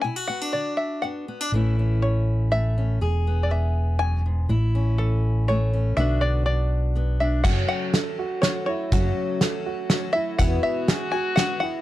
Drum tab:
CC |------|------|------|------|
HH |------|------|------|------|
SD |------|------|------|------|
BD |------|------|------|------|

CC |------|x-----|------|------|
HH |------|--x-x-|x-x-x-|x-x-x-|
SD |------|--o-o-|--o-o-|--o-o-|
BD |------|o-----|o-----|o-----|